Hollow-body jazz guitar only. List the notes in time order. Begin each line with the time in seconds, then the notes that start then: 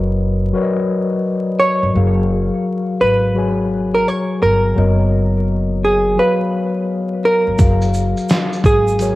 1.60 C#5
3.01 B4
3.94 A#4
4.08 C#5
4.42 A#4
5.85 G#4
6.19 B4
7.25 A#4
8.66 G#4